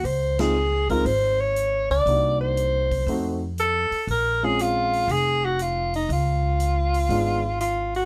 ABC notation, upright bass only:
X:1
M:4/4
L:1/8
Q:"Swing" 1/4=119
K:Db
V:1 name="Upright bass" clef=bass
D,,4 A,,,3 D,, | C,,4 F,,3 z | B,,,4 F,,,4 | D,,4 A,,,4 |]